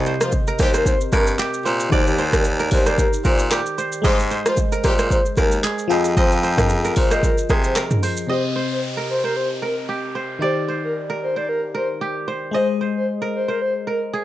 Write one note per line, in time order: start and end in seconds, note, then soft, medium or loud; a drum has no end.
0.00 0.15 C2 loud
0.00 1.87 C3 medium
0.00 1.88 C4 medium
0.00 0.95 G4 medium
0.00 1.89 G4 medium
0.00 0.87 D#5 loud
0.00 1.93 D#5 medium
0.06 0.74 C5 medium
0.06 shaker soft
0.21 0.30 F3 medium
0.21 0.30 F4 medium
0.21 0.32 C5 medium
0.21 cross-stick loud
0.21 shaker medium
0.32 kick medium
0.32 shaker medium
0.47 1.12 A#4 medium
0.47 shaker medium
0.59 0.95 D#2 medium
0.59 0.68 G3 medium
0.59 0.68 G4 loud
0.59 0.72 C5 medium
0.59 kick loud
0.59 cross-stick medium
0.59 open hi-hat medium
0.59 shaker medium
0.74 0.84 A#4 medium
0.74 1.65 C5 medium
0.74 cross-stick loud
0.74 shaker medium
0.86 0.99 C5 medium
0.86 kick medium
0.86 shaker loud
1.01 shaker medium
1.12 1.35 G2 loud
1.12 2.40 A#4 medium
1.12 1.25 A#4 medium
1.12 kick loud
1.12 cross-stick loud
1.12 shaker medium
1.27 shaker medium
1.39 2.80 G4 medium
1.39 clap medium
1.39 shaker medium
1.54 shaker medium
1.65 1.88 A#2 medium
1.65 2.18 C5 medium
1.65 shaker medium
1.80 shaker loud
1.90 2.68 D#2 loud
1.90 3.99 D#3 medium
1.90 4.00 D#4 medium
1.90 1.99 F#4 medium
1.90 2.05 C5 loud
1.90 3.03 D5 loud
1.90 kick loud
1.90 shaker medium
1.95 4.02 D5 medium
1.99 4.04 G4 medium
2.07 shaker medium
2.18 2.86 C5 medium
2.18 shaker soft
2.33 2.44 A#4 medium
2.33 kick medium
2.33 cross-stick loud
2.33 shaker medium
2.44 shaker medium
2.60 3.25 A#4 medium
2.60 shaker medium
2.71 3.07 D#2 loud
2.71 2.85 C5 medium
2.71 kick loud
2.71 open hi-hat medium
2.71 shaker medium
2.86 3.78 C5 medium
2.86 2.97 D5 medium
2.86 cross-stick loud
2.86 shaker medium
2.98 3.11 A#4 medium
2.98 kick medium
2.98 shaker medium
3.13 shaker medium
3.25 3.60 A#2 loud
3.25 4.52 A#4 medium
3.25 3.38 C5 medium
3.25 kick loud
3.25 shaker medium
3.39 shaker medium
3.51 4.93 G4 medium
3.51 cross-stick medium
3.51 clap medium
3.51 shaker medium
3.66 shaker medium
3.78 4.31 C5 medium
3.78 shaker medium
3.92 shaker loud
4.02 4.40 G#2 loud
4.02 4.16 G3 loud
4.02 5.85 G#3 medium
4.02 4.16 G4 loud
4.02 5.86 G#4 medium
4.02 5.87 C5 medium
4.02 4.17 C5 loud
4.02 5.12 D#5 loud
4.02 kick loud
4.02 shaker medium
4.07 4.13 D5 medium
4.13 5.91 D#5 medium
4.19 shaker medium
4.31 4.98 C5 medium
4.31 shaker soft
4.46 4.55 F3 medium
4.46 4.55 F4 loud
4.46 4.57 C5 medium
4.46 cross-stick loud
4.46 shaker medium
4.57 kick medium
4.57 shaker medium
4.72 5.37 A#4 medium
4.72 shaker medium
4.84 5.20 A#2 loud
4.84 4.93 G3 medium
4.84 4.93 G4 loud
4.84 4.97 C5 medium
4.84 kick loud
4.84 cross-stick loud
4.84 open hi-hat medium
4.84 shaker medium
4.99 5.10 A#4 medium
4.99 5.90 C5 medium
4.99 cross-stick loud
4.99 shaker medium
5.11 5.24 C5 medium
5.11 kick medium
5.11 shaker medium
5.26 shaker medium
5.37 5.60 D#2 loud
5.37 6.65 A#4 medium
5.37 5.51 A#4 medium
5.37 kick loud
5.37 cross-stick loud
5.37 shaker medium
5.52 shaker medium
5.63 7.00 G#4 medium
5.63 clap medium
5.63 shaker medium
5.79 shaker medium
5.88 6.13 F2 loud
5.88 7.97 F3 medium
5.88 7.98 F4 medium
5.88 7.99 G#4 medium
5.88 6.43 C5 medium
5.88 shaker medium
5.93 8.00 D#5 medium
6.05 shaker medium
6.17 6.92 F2 loud
6.17 6.30 C5 loud
6.17 7.24 D#5 loud
6.17 kick loud
6.17 shaker medium
6.32 shaker medium
6.43 7.11 C5 medium
6.43 shaker soft
6.58 6.69 A#4 medium
6.58 kick medium
6.58 cross-stick loud
6.58 mid tom medium
6.58 shaker medium
6.69 shaker medium
6.85 7.76 A#4 medium
6.85 shaker medium
6.96 7.32 A#2 medium
6.96 7.10 C5 medium
6.96 kick loud
6.96 open hi-hat medium
6.96 shaker medium
7.11 8.02 C5 medium
7.11 7.22 D#5 medium
7.11 cross-stick loud
7.11 shaker medium
7.23 7.36 A#4 medium
7.23 kick medium
7.23 shaker medium
7.38 shaker medium
7.49 7.85 C3 loud
7.49 8.86 G#4 medium
7.49 kick loud
7.49 cross-stick loud
7.49 shaker medium
7.64 7.75 C5 medium
7.64 shaker medium
7.76 8.97 A#4 medium
7.76 cross-stick medium
7.76 clap medium
7.76 shaker medium
7.91 mid tom loud
7.91 shaker medium
8.03 8.55 C5 medium
8.03 open hi-hat medium
8.03 shaker medium
8.17 shaker medium
8.27 10.36 C3 medium
8.27 10.37 C4 medium
8.27 10.38 G4 medium
8.27 8.42 C5 medium
8.27 9.36 D#5 loud
8.27 downlifter medium
8.32 10.39 D#5 medium
8.56 9.23 C5 medium
8.72 8.81 C5 medium
8.97 9.62 A#4 medium
9.10 9.22 C5 medium
9.24 9.34 A#4 medium
9.24 10.15 C5 medium
9.37 9.48 C5 medium
9.62 10.90 A#4 medium
9.62 9.75 A#4 medium
9.89 11.30 G4 medium
10.15 10.68 C5 medium
10.39 12.49 D#3 medium
10.39 12.50 D#4 medium
10.39 12.50 G4 medium
10.39 11.53 D5 loud
10.43 10.55 C5 loud
10.43 12.51 D5 medium
10.68 11.36 C5 medium
10.84 10.94 A#4 medium
11.10 11.74 A#4 medium
11.23 11.34 C5 medium
11.36 12.27 C5 medium
11.36 11.47 D5 medium
11.49 11.61 A#4 medium
11.75 13.02 A#4 medium
11.75 11.88 C5 medium
12.01 13.42 G4 medium
12.28 12.80 C5 medium
12.51 14.24 G#3 medium
12.51 14.24 G#4 medium
12.51 14.24 C5 medium
12.51 13.61 D#5 loud
12.55 12.67 C5 loud
12.55 14.24 D#5 medium
12.81 13.48 C5 medium
12.97 13.06 C5 medium
13.22 13.87 A#4 medium
13.35 13.47 C5 medium
13.48 13.59 A#4 medium
13.48 14.24 C5 medium
13.62 13.73 C5 medium
13.87 14.24 A#4 medium
13.87 14.00 A#4 medium
14.13 14.24 G#4 medium